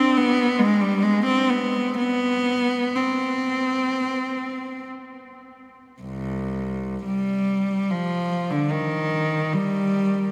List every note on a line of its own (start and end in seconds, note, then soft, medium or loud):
0.00 0.16 C4 medium
0.17 0.59 B3 medium
0.58 0.80 G#3 medium
0.81 1.03 G3 medium
1.03 1.25 G#3 medium
1.26 1.48 C4 medium
1.50 1.97 B3 medium
1.98 2.93 B3 medium
2.95 4.86 C4 medium
6.01 7.03 C2 medium
7.05 7.88 G3 medium
7.90 8.50 F3 medium
8.50 8.70 D3 medium
8.71 9.51 D#3 medium
9.53 10.32 G3 medium